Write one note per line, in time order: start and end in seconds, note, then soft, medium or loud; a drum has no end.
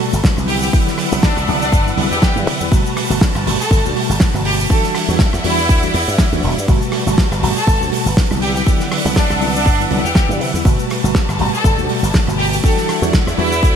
0.00 0.14 B2 medium
0.00 0.14 G3 medium
0.00 0.47 G3 medium
0.00 0.14 A3 medium
0.00 0.14 F#4 medium
0.00 0.47 F#4 medium
0.00 0.47 A4 medium
0.00 4.66 B4 medium
0.13 0.21 G1 medium
0.13 shaker medium
0.24 kick loud
0.24 snare loud
0.24 shaker medium
0.37 0.68 C2 medium
0.37 0.70 D3 medium
0.37 0.71 F#3 medium
0.37 0.71 B3 medium
0.37 0.71 E4 medium
0.37 cross-stick medium
0.37 shaker medium
0.47 0.57 G4 medium
0.47 2.69 D5 medium
0.47 2.70 E5 medium
0.47 2.69 F#5 medium
0.47 open hi-hat loud
0.62 0.69 G4 medium
0.62 shaker medium
0.73 1.08 D3 medium
0.73 1.08 F#3 medium
0.73 1.08 B3 medium
0.73 1.09 E4 medium
0.73 kick loud
0.73 shaker medium
0.88 snare soft
0.88 shaker soft
0.98 cross-stick medium
0.98 open hi-hat loud
1.12 1.20 C2 loud
1.12 1.24 D3 medium
1.12 1.24 F#3 medium
1.12 1.25 B3 medium
1.12 1.25 E4 loud
1.12 shaker medium
1.22 1.43 D4 medium
1.22 kick loud
1.22 snare loud
1.22 shaker medium
1.37 1.45 C2 medium
1.37 cross-stick medium
1.37 shaker medium
1.47 1.74 C2 medium
1.47 1.62 D3 medium
1.47 1.63 F#3 medium
1.47 1.63 B3 medium
1.47 1.63 E4 loud
1.47 open hi-hat loud
1.61 1.81 D4 medium
1.61 shaker medium
1.72 1.91 G1 medium
1.72 kick loud
1.72 shaker medium
1.85 1.95 D3 medium
1.85 1.95 F#3 medium
1.85 1.95 B3 medium
1.85 1.95 E4 medium
1.85 shaker soft
1.97 2.07 C2 medium
1.97 2.12 D3 medium
1.97 2.12 F#3 medium
1.97 2.12 B3 medium
1.97 2.12 E4 medium
1.97 open hi-hat loud
2.11 2.19 E2 medium
2.11 2.18 G4 medium
2.11 shaker medium
2.21 2.30 G4 medium
2.21 kick loud
2.21 snare loud
2.21 shaker medium
2.35 2.47 G2 loud
2.35 2.69 D3 medium
2.35 2.69 F#3 medium
2.35 2.69 B3 medium
2.35 2.69 E4 medium
2.35 shaker medium
2.47 2.57 C3 medium
2.47 open hi-hat loud
2.60 2.68 E2 medium
2.60 shaker medium
2.71 2.81 G1 loud
2.71 3.07 B2 medium
2.71 3.07 G3 medium
2.71 4.68 G3 medium
2.71 3.07 A3 medium
2.71 4.68 F#4 medium
2.71 3.07 F#4 loud
2.71 4.68 A5 medium
2.71 kick loud
2.71 shaker medium
2.86 shaker soft
2.97 cross-stick medium
2.97 open hi-hat loud
3.10 3.18 G1 loud
3.10 3.23 B2 loud
3.10 3.23 G3 medium
3.10 3.23 A3 medium
3.10 3.23 F#4 loud
3.10 shaker medium
3.21 kick loud
3.21 snare loud
3.21 shaker medium
3.35 3.43 G1 medium
3.35 cross-stick medium
3.35 shaker medium
3.46 3.56 G1 medium
3.46 3.61 B2 medium
3.46 3.61 G3 medium
3.46 3.61 A3 medium
3.46 3.61 F#4 loud
3.46 open hi-hat loud
3.59 3.79 A4 medium
3.59 shaker medium
3.71 3.80 G1 loud
3.71 kick loud
3.71 shaker medium
3.84 3.92 D2 loud
3.84 3.93 B2 medium
3.84 3.94 G3 medium
3.84 3.94 A3 medium
3.84 3.94 F#4 medium
3.84 shaker medium
3.96 4.10 B2 medium
3.96 4.11 G3 medium
3.96 4.11 A3 medium
3.96 4.11 F#4 loud
3.96 open hi-hat loud
4.09 4.17 G1 medium
4.09 shaker medium
4.20 kick loud
4.20 snare loud
4.20 shaker medium
4.34 4.65 G1 medium
4.34 4.67 B2 medium
4.34 4.67 G3 medium
4.34 4.68 A3 medium
4.34 4.68 F#4 medium
4.34 cross-stick medium
4.34 shaker medium
4.45 4.54 G4 medium
4.45 open hi-hat loud
4.59 4.66 G4 medium
4.59 shaker medium
4.69 5.05 E3 medium
4.69 5.05 G3 medium
4.69 5.05 D4 medium
4.69 6.66 E4 medium
4.69 5.05 F#4 loud
4.69 4.90 A4 medium
4.69 6.66 D5 medium
4.69 6.66 E5 medium
4.69 6.66 F#5 medium
4.69 kick loud
4.69 shaker medium
4.83 snare soft
4.83 shaker soft
4.95 cross-stick medium
4.95 open hi-hat loud
5.08 5.16 E2 loud
5.08 5.21 E3 medium
5.08 5.21 G3 medium
5.08 5.21 D4 medium
5.08 5.22 F#4 loud
5.08 shaker medium
5.19 kick loud
5.19 snare loud
5.19 shaker medium
5.33 5.41 E2 medium
5.33 cross-stick medium
5.33 shaker medium
5.44 5.69 E2 medium
5.44 5.59 E3 medium
5.44 5.59 G3 medium
5.44 5.59 D4 medium
5.44 5.94 E4 medium
5.44 5.60 F#4 loud
5.44 open hi-hat loud
5.58 shaker medium
5.69 5.87 D2 medium
5.69 kick loud
5.69 shaker medium
5.82 5.92 E3 medium
5.82 5.92 G3 medium
5.82 5.92 D4 medium
5.82 5.92 F#4 medium
5.82 shaker soft
5.94 6.04 E2 medium
5.94 open hi-hat loud
6.08 6.16 G2 medium
6.08 shaker medium
6.18 kick loud
6.18 snare loud
6.18 shaker medium
6.32 6.45 D2 loud
6.32 6.54 E3 medium
6.32 6.54 G3 medium
6.32 6.54 D4 medium
6.32 6.55 F#4 medium
6.32 shaker soft
6.43 6.53 E1 medium
6.43 open hi-hat loud
6.58 6.65 G2 medium
6.58 shaker medium
6.68 6.78 G1 loud
6.68 7.03 B2 medium
6.68 8.40 G3 medium
6.68 7.03 G3 medium
6.68 7.04 A3 medium
6.68 8.40 F#4 medium
6.68 7.04 F#4 loud
6.68 12.59 B4 medium
6.68 8.40 A5 medium
6.68 kick loud
6.68 shaker medium
6.82 shaker soft
6.92 cross-stick medium
6.92 open hi-hat loud
7.06 7.15 G1 loud
7.06 7.19 B2 medium
7.06 7.19 G3 medium
7.06 7.20 A3 medium
7.06 7.20 F#4 loud
7.06 shaker medium
7.18 kick loud
7.18 snare loud
7.18 shaker medium
7.31 7.39 G1 medium
7.31 cross-stick medium
7.31 shaker soft
7.42 7.52 G1 medium
7.42 7.57 B2 medium
7.42 7.57 G3 medium
7.42 7.58 A3 medium
7.42 7.58 F#4 loud
7.42 open hi-hat loud
7.56 7.76 A4 loud
7.56 shaker medium
7.67 7.77 G1 loud
7.67 kick loud
7.67 shaker medium
7.80 7.89 D2 loud
7.80 7.90 B2 medium
7.80 7.90 G3 medium
7.80 7.90 A3 medium
7.80 7.90 F#4 medium
7.80 shaker soft
7.92 8.07 B2 medium
7.92 8.07 G3 medium
7.92 8.07 A3 medium
7.92 8.07 F#4 loud
7.92 open hi-hat loud
8.06 8.14 G1 medium
8.06 shaker medium
8.17 kick loud
8.17 snare loud
8.17 shaker medium
8.30 8.62 C2 medium
8.30 8.64 D3 medium
8.30 8.64 F#3 medium
8.30 8.64 B3 medium
8.30 8.64 E4 medium
8.30 cross-stick medium
8.30 shaker soft
8.41 8.50 G4 medium
8.41 10.63 D5 medium
8.41 10.62 E5 medium
8.41 10.63 F#5 medium
8.41 open hi-hat loud
8.55 8.63 G4 medium
8.55 shaker medium
8.66 9.01 D3 medium
8.66 9.02 F#3 medium
8.66 9.02 B3 medium
8.66 9.02 E4 medium
8.66 kick loud
8.66 shaker medium
8.80 snare soft
8.80 shaker soft
8.92 cross-stick medium
8.92 open hi-hat loud
9.04 9.13 C2 loud
9.04 9.17 D3 loud
9.04 9.18 F#3 medium
9.04 9.18 B3 medium
9.04 9.18 E4 loud
9.04 shaker medium
9.16 9.37 D4 medium
9.16 kick loud
9.16 snare loud
9.16 shaker medium
9.30 9.38 C2 medium
9.30 cross-stick medium
9.30 shaker soft
9.41 9.67 C2 medium
9.41 9.56 D3 loud
9.41 9.56 F#3 medium
9.41 9.56 B3 medium
9.41 9.56 E4 loud
9.41 open hi-hat loud
9.54 9.74 D4 medium
9.54 shaker medium
9.66 9.84 G1 medium
9.66 kick loud
9.66 shaker medium
9.79 9.88 D3 medium
9.79 9.88 F#3 medium
9.79 9.88 B3 medium
9.79 9.89 E4 medium
9.79 shaker medium
9.90 10.00 C2 medium
9.90 10.05 D3 medium
9.90 10.05 F#3 medium
9.90 10.06 B3 medium
9.90 10.06 E4 medium
9.90 open hi-hat loud
10.04 10.12 E2 medium
10.04 10.11 G4 medium
10.04 shaker medium
10.15 10.24 G4 medium
10.15 kick loud
10.15 snare loud
10.15 shaker medium
10.28 10.40 G2 loud
10.28 10.62 D3 medium
10.28 10.62 F#3 medium
10.28 10.63 B3 medium
10.28 10.63 E4 medium
10.28 shaker soft
10.40 10.50 C3 medium
10.40 open hi-hat loud
10.54 10.62 E2 medium
10.54 shaker medium
10.65 10.75 G1 loud
10.65 11.00 B2 medium
10.65 12.61 G3 medium
10.65 11.00 G3 medium
10.65 11.00 A3 medium
10.65 12.61 F#4 medium
10.65 11.01 F#4 loud
10.65 12.61 A5 medium
10.65 kick loud
10.65 shaker medium
10.79 shaker medium
10.90 cross-stick medium
10.90 open hi-hat loud
11.03 11.12 G1 loud
11.03 11.16 B2 medium
11.03 11.16 G3 medium
11.03 11.16 A3 medium
11.03 11.16 F#4 loud
11.03 shaker medium
11.15 kick loud
11.15 snare loud
11.15 shaker medium
11.29 11.36 G1 medium
11.29 cross-stick medium
11.29 shaker soft
11.39 11.49 G1 medium
11.39 11.54 B2 loud
11.39 11.54 G3 medium
11.39 11.54 A3 medium
11.39 11.55 F#4 loud
11.39 open hi-hat loud
11.53 11.73 A4 medium
11.53 shaker medium
11.64 11.74 G1 loud
11.64 kick loud
11.64 shaker medium
11.77 11.86 D2 loud
11.77 11.87 B2 medium
11.77 11.87 G3 medium
11.77 11.87 A3 medium
11.77 11.87 F#4 medium
11.77 shaker soft
11.89 12.04 B2 medium
11.89 12.04 G3 medium
11.89 12.04 A3 medium
11.89 12.04 F#4 loud
11.89 open hi-hat loud
12.03 12.11 G1 medium
12.03 shaker medium
12.14 kick loud
12.14 snare loud
12.14 shaker medium
12.27 12.58 G1 medium
12.27 12.61 B2 medium
12.27 12.61 G3 medium
12.27 12.61 A3 medium
12.27 12.61 F#4 medium
12.27 cross-stick medium
12.27 shaker medium
12.38 12.47 G4 medium
12.38 open hi-hat loud
12.51 12.59 G4 medium
12.51 shaker medium
12.62 12.98 E3 medium
12.62 12.99 G3 medium
12.62 12.99 D4 medium
12.62 13.76 E4 medium
12.62 12.99 F#4 loud
12.62 12.83 A4 medium
12.62 13.76 D5 medium
12.62 13.76 E5 medium
12.62 13.76 F#5 medium
12.62 kick loud
12.62 shaker medium
12.77 snare soft
12.77 shaker medium
12.89 cross-stick medium
12.89 open hi-hat loud
13.02 13.10 E2 loud
13.02 13.14 E3 medium
13.02 13.15 G3 medium
13.02 13.15 D4 medium
13.02 13.15 F#4 loud
13.02 shaker medium
13.13 kick loud
13.13 snare loud
13.13 shaker medium
13.27 13.35 E2 medium
13.27 cross-stick medium
13.27 shaker soft
13.37 13.63 E2 medium
13.37 13.52 E3 loud
13.37 13.53 G3 medium
13.37 13.53 D4 medium
13.37 13.76 E4 medium
13.37 13.53 F#4 loud
13.37 open hi-hat loud
13.52 shaker medium
13.63 13.76 D2 medium
13.63 kick loud
13.63 reverse cymbal medium
13.63 shaker medium